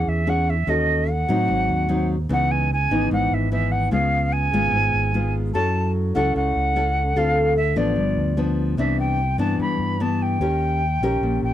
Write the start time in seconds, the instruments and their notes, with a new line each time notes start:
Already playing: nylon-string guitar E3 C#4 E4 G#4, flute F#5
0.07 fingered electric bass E2, flute E5
0.27 nylon-string guitar C#4 E4 G#4, flute F#5
0.50 flute E5
0.67 fingered electric bass D#2, nylon-string guitar D#3 C#4 F#4 A4, flute D#5
1.11 flute F#5
1.29 fingered electric bass A2, nylon-string guitar F#3 C4 D#4
1.48 fingered electric bass G#1, nylon-string guitar G#2
1.69 fingered electric bass D#2
1.89 nylon-string guitar F#3 C4 D#4
2.29 fingered electric bass C#2, nylon-string guitar C#3 E3 B3 D#4, flute F#5
2.51 flute G#5
2.73 flute G#5
2.91 fingered electric bass G#1, nylon-string guitar E3 B3 D#4
3.11 fingered electric bass G#1, nylon-string guitar G#2, flute F#5
3.31 fingered electric bass G#1, flute E5
3.52 nylon-string guitar E3 B3 D#4, flute E5
3.72 flute F#5
3.91 fingered electric bass C#2, nylon-string guitar C#3 G#3 B3 F4, flute F5
4.33 flute G#5
4.53 fingered electric bass G#1, nylon-string guitar G#3 B3 F4
4.72 fingered electric bass G#1, nylon-string guitar G#2
4.94 fingered electric bass G#1
5.14 nylon-string guitar G#3 B3 F4
5.54 fingered electric bass F#2, nylon-string guitar F#3 C#4 E4 A4, flute A5
6.15 fingered electric bass C#2, nylon-string guitar C#4 E4 A4, flute F#5
6.35 fingered electric bass C#2, nylon-string guitar C#3, flute F#5
6.56 fingered electric bass C#2
6.76 nylon-string guitar C#4 E4 A4
7.16 fingered electric bass D2, nylon-string guitar D3 C4 F4 A4, flute F5
7.57 flute E5
7.76 fingered electric bass A1, nylon-string guitar F3 B3 D4, flute D5
7.96 fingered electric bass G1, nylon-string guitar G2
8.16 fingered electric bass D2
8.37 nylon-string guitar F3 B3 D4
8.77 fingered electric bass C2, nylon-string guitar C3 E3 B3 D4, flute E5
9.00 flute G5
9.38 fingered electric bass G2, nylon-string guitar E3 B3 D4, flute A5
9.59 fingered electric bass G2, nylon-string guitar G2, flute B5
9.79 fingered electric bass G2
10.00 nylon-string guitar E3 B3 D4, flute A5
10.22 flute G5
10.40 fingered electric bass D#2, nylon-string guitar D#3 C#4 G4 A#4
11.01 fingered electric bass A#1, nylon-string guitar C#4 G4 A#4
11.21 fingered electric bass A#1, nylon-string guitar A#2
11.43 fingered electric bass A#1, flute G5